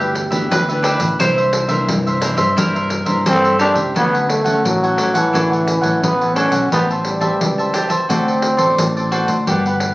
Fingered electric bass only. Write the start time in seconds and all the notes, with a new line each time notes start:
Already playing: D2
0.32 D2
0.52 D2
1.01 A1
1.20 C2
1.69 C2
1.89 C2
2.37 G2
2.58 G2
3.07 G2
3.27 G2
3.76 C#2
3.96 D2
4.65 A1
5.34 A1
5.83 A1
6.03 A1
6.52 B1
6.72 A1
7.41 C#2
8.10 D2
8.59 A1
8.80 A1
9.28 D2
9.49 G1